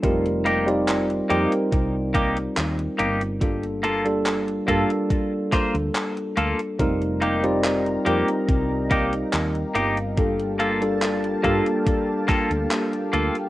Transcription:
<<
  \new Staff \with { instrumentName = "Analog synth pad" } { \time 4/4 \key g \minor \tempo 4 = 71 << { r1 | r1 | <ees' bes''>1 | <bes a''>1 | } \\ { r1 | r1 | <g' f''>1~ | <g' f''>1 | } >> }
  \new Staff \with { instrumentName = "Clean electric guitar" } { \time 4/4 \key g \minor r8 <bes ees' g'>16 r8. <bes ees' g'>16 r8. <bes ees' g'>16 r8. <bes ees' g'>16 r16 | r8 <bes f' a'>16 r8. <bes f' a'>16 r8. <bes f' c''>16 r8. <bes f' a'>16 r16 | r8 <bes ees' g'>16 r8. <bes ees' g'>16 r8. <bes ees' g'>16 r8. <bes ees' g'>16 r16 | r8 <bes f' a'>16 r8. <bes f' a'>16 r8. <bes f' a'>16 r8. <bes f' a'>16 r16 | }
  \new Staff \with { instrumentName = "Tine electric piano" } { \time 4/4 \key g \minor <g c' ees' f' bes'>8. <g c' ees' f' d''>8. <g c' ees' f' bes'>2~ <g c' ees' f' bes'>8 | <g bes d' f' a'>8. <g bes d' f' a'>8. <g bes d' f' a'>2~ <g bes d' f' a'>8 | <g c' ees' f' bes'>8. <g c' ees' f' d''>8. <g c' ees' f' bes'>2~ <g c' ees' f' bes'>8 | <g bes d' f' a'>8. <g bes d' f' a'>8. <g bes d' f' a'>2~ <g bes d' f' a'>8 | }
  \new Staff \with { instrumentName = "Fretless electric bass" } { \clef bass \time 4/4 \key g \minor f,,4. f,16 r16 c,4 ees,16 r16 g,,8~ | g,,4. g,16 r4 d,16 r8 d,16 r16 | f,,4. f,16 r16 c,4 ees,16 r16 g,,8~ | g,,4. g,16 r4 d,16 r8 d,16 r16 | }
  \new DrumStaff \with { instrumentName = "Drums" } \drummode { \time 4/4 <hh bd>16 hh16 hh16 hh16 <hc hh>16 hh16 hh16 hh16 <hh bd>8 <hh bd>16 hh16 <hc hh>16 hh16 hh16 hh16 | <hh bd>16 hh16 hh16 hh16 <hc hh>16 hh16 <hh bd>16 hh16 <hh bd>8 <hc hh bd>16 hh16 <hc hh>16 hh16 hh16 hh16 | <hh bd>16 hh16 hh16 hh16 <hc hh>16 hh16 hh16 hh16 <hh bd>8 <hh bd>16 hh16 <hc hh>16 hh16 hh16 hh16 | <hh bd>16 hh16 hh16 hh16 <hc hh>16 hh16 <hh bd>16 hh16 <hh bd>8 <hc hh bd>16 hh16 <hc hh>16 hh16 hh16 hh16 | }
>>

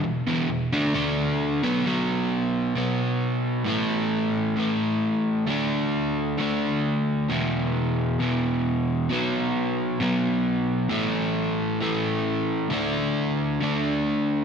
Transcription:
\new Staff \with { instrumentName = "Overdriven electric guitar" } { \clef bass \time 4/4 \key b \dorian \tempo 4 = 133 <e, b,>8 <e, b, e>8 <e, b,>8 <d a d'>8 <d a d'>4. <b, fis b>8 | <b, fis b>2 <b, fis b>2 | <a, e a>2 <a, e a>2 | <d a d'>2 <d a d'>2 |
<e, b, e>2 <e, b, e>2 | <b, fis b>2 <b, fis b>2 | <a, e a>2 <a, e a>2 | <d a d'>2 <d a d'>2 | }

